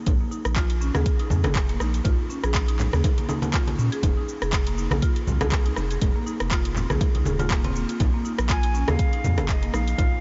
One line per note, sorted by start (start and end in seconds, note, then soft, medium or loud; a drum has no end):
0.06 0.18 A#1 loud
0.06 kick loud
0.06 closed hi-hat medium
0.06 low bongo medium
0.06 low conga medium
0.06 cabasa soft
0.21 0.31 A#3 medium
0.31 0.44 D#4 medium
0.31 cabasa medium
0.45 0.91 A#1 medium
0.45 cross-stick medium
0.45 closed hi-hat soft
0.45 cabasa medium
0.56 0.69 F4 loud
0.56 kick loud
0.56 clap loud
0.56 closed hi-hat medium
0.56 cabasa soft
0.70 closed hi-hat soft
0.81 0.94 C#4 medium
0.81 cabasa medium
0.95 1.04 D#2 medium
0.95 1.05 G#4 medium
0.95 cross-stick medium
0.95 high bongo medium
0.95 high conga loud
0.95 cabasa medium
1.06 kick loud
1.06 closed hi-hat medium
1.06 cabasa soft
1.19 1.30 D#4 medium
1.19 closed hi-hat soft
1.30 1.46 F2 medium
1.30 high conga medium
1.30 low conga medium
1.30 cabasa medium
1.44 1.77 F1 medium
1.44 1.51 G#4 medium
1.44 cross-stick medium
1.44 closed hi-hat soft
1.44 high bongo medium
1.44 high conga loud
1.44 cabasa medium
1.55 kick loud
1.55 clap loud
1.55 closed hi-hat medium
1.55 cabasa soft
1.69 1.80 A#3 medium
1.69 closed hi-hat soft
1.80 2.01 A#1 loud
1.80 1.93 D#4 medium
1.80 cross-stick medium
1.80 low bongo medium
1.80 cabasa medium
1.94 closed hi-hat soft
1.94 cabasa medium
2.05 2.17 A#1 loud
2.05 2.18 F4 loud
2.05 kick loud
2.05 closed hi-hat medium
2.05 low bongo medium
2.05 low conga medium
2.05 cabasa soft
2.30 2.42 C#4 medium
2.30 cabasa medium
2.44 2.89 A#1 medium
2.44 2.54 G#4 loud
2.44 cross-stick medium
2.44 closed hi-hat soft
2.44 cabasa soft
2.55 kick loud
2.55 clap loud
2.55 closed hi-hat medium
2.55 cabasa soft
2.68 2.79 D#4 medium
2.68 closed hi-hat soft
2.79 clap soft
2.79 low conga medium
2.79 cabasa medium
2.93 3.02 D#2 medium
2.93 2.99 G#4 medium
2.93 cross-stick medium
2.93 high conga medium
2.93 cabasa medium
3.04 kick loud
3.04 closed hi-hat medium
3.04 low bongo medium
3.04 cabasa soft
3.18 3.28 A#3 medium
3.18 closed hi-hat soft
3.18 high conga medium
3.29 3.41 D#4 medium
3.29 high bongo medium
3.29 high conga medium
3.29 cabasa medium
3.42 closed hi-hat soft
3.42 low bongo medium
3.42 high conga loud
3.42 cabasa medium
3.54 3.67 F4 loud
3.54 kick loud
3.54 clap loud
3.54 closed hi-hat medium
3.54 cabasa soft
3.67 closed hi-hat soft
3.67 high conga loud
3.79 3.90 A#2 medium
3.79 3.91 C#4 medium
3.79 cabasa medium
3.92 4.02 G#4 loud
3.92 closed hi-hat soft
3.92 cabasa soft
4.03 4.15 F1 loud
4.03 kick loud
4.03 closed hi-hat medium
4.03 low bongo medium
4.03 low conga medium
4.03 cabasa soft
4.17 4.28 D#4 medium
4.29 cabasa medium
4.42 4.88 F1 medium
4.42 4.48 G#4 medium
4.42 cross-stick medium
4.42 closed hi-hat soft
4.42 cabasa soft
4.53 kick loud
4.53 clap loud
4.53 closed hi-hat medium
4.53 cabasa soft
4.67 4.77 A#3 medium
4.67 closed hi-hat soft
4.78 4.90 D#4 medium
4.78 cabasa medium
4.91 5.01 A#1 medium
4.91 cross-stick medium
4.91 high bongo medium
4.91 high conga loud
4.91 cabasa soft
5.02 5.16 F4 loud
5.02 kick loud
5.02 closed hi-hat medium
5.02 cabasa soft
5.16 closed hi-hat soft
5.27 5.39 C2 medium
5.27 5.40 C4 medium
5.27 high conga medium
5.27 low conga medium
5.27 cabasa medium
5.41 5.74 C2 medium
5.41 5.51 G#4 loud
5.41 cross-stick medium
5.41 closed hi-hat soft
5.41 high bongo loud
5.41 high conga loud
5.41 cabasa soft
5.52 kick loud
5.52 clap loud
5.52 closed hi-hat medium
5.52 cabasa soft
5.66 5.76 D#4 medium
5.66 closed hi-hat soft
5.76 5.98 F1 loud
5.76 cross-stick medium
5.76 low bongo medium
5.76 cabasa medium
5.91 5.97 G#4 medium
5.91 closed hi-hat soft
5.91 cabasa soft
6.02 6.13 F1 medium
6.02 kick loud
6.02 closed hi-hat medium
6.02 low bongo medium
6.02 low conga medium
6.02 cabasa soft
6.16 6.26 A#3 medium
6.27 6.39 D#4 medium
6.27 cabasa medium
6.40 6.86 F1 medium
6.40 cross-stick medium
6.40 closed hi-hat soft
6.40 cabasa soft
6.51 6.65 F4 loud
6.51 kick loud
6.51 clap loud
6.51 closed hi-hat medium
6.51 cabasa soft
6.65 closed hi-hat soft
6.76 6.89 C4 medium
6.76 clap soft
6.76 low conga medium
6.76 cabasa medium
6.90 6.99 A#1 medium
6.90 7.00 G#4 medium
6.90 cross-stick medium
6.90 high conga loud
6.90 cabasa medium
7.01 kick loud
7.01 closed hi-hat medium
7.01 low bongo medium
7.01 cabasa soft
7.15 7.24 C2 medium
7.15 7.25 D#4 medium
7.15 closed hi-hat soft
7.15 high conga medium
7.25 7.85 D#1 medium
7.25 7.38 G#4 medium
7.25 high bongo medium
7.25 high conga medium
7.25 cabasa medium
7.39 7.46 F4 loud
7.39 closed hi-hat soft
7.39 low bongo medium
7.39 high conga loud
7.39 cabasa medium
7.51 7.58 A#3 medium
7.51 kick loud
7.51 clap loud
7.51 closed hi-hat medium
7.51 cabasa soft
7.64 7.75 C4 loud
7.64 closed hi-hat soft
7.64 high conga medium
7.75 7.88 A#3 medium
7.75 cabasa medium
7.89 7.95 F4 medium
7.89 closed hi-hat soft
7.89 cabasa medium
8.00 8.12 A#1 loud
8.00 kick loud
8.00 closed hi-hat medium
8.00 low bongo medium
8.00 low conga loud
8.00 cabasa soft
8.14 8.24 A#3 medium
8.25 8.37 D#4 medium
8.25 cabasa medium
8.39 8.85 A#1 medium
8.39 cross-stick loud
8.39 closed hi-hat soft
8.39 cabasa medium
8.50 8.63 F4 loud
8.50 8.81 G#5 loud
8.50 kick loud
8.50 clap loud
8.50 closed hi-hat medium
8.50 cabasa soft
8.63 closed hi-hat soft
8.74 8.87 C#4 medium
8.74 cabasa medium
8.81 8.90 G#5 medium
8.88 8.97 D#2 medium
8.88 8.98 G#4 loud
8.88 9.48 F5 loud
8.88 cross-stick medium
8.88 high bongo medium
8.88 high conga loud
8.88 cabasa medium
8.99 kick loud
8.99 closed hi-hat medium
8.99 cabasa soft
9.13 9.24 D#4 medium
9.13 closed hi-hat soft
9.24 9.39 F2 medium
9.24 high conga medium
9.24 low conga medium
9.24 cabasa medium
9.38 9.71 F1 medium
9.38 9.44 G#4 medium
9.38 cross-stick medium
9.38 closed hi-hat soft
9.38 high bongo loud
9.38 high conga loud
9.38 cabasa medium
9.49 9.76 D#5 medium
9.49 kick loud
9.49 clap loud
9.49 closed hi-hat medium
9.49 cabasa soft
9.63 9.73 A#3 medium
9.63 closed hi-hat soft
9.74 9.95 A#1 loud
9.74 9.86 D#4 medium
9.74 10.21 F5 loud
9.74 cross-stick medium
9.74 low bongo medium
9.74 cabasa medium
9.88 closed hi-hat soft
9.88 cabasa medium
9.98 10.10 A#1 loud
9.98 10.12 F4 loud
9.98 kick loud
9.98 closed hi-hat medium
9.98 low bongo medium
9.98 low conga loud
9.98 cabasa soft